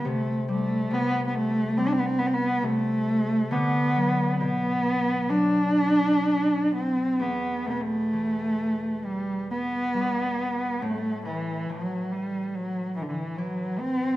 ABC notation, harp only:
X:1
M:4/4
L:1/8
Q:1/4=68
K:Em
V:1 name="Harp" clef=bass
C, G, C,2 G,2 C,2 | D, F, B,,2 F,4 | E,, B,, E,4 G,2 | A,, E, A,,4 E,2 |]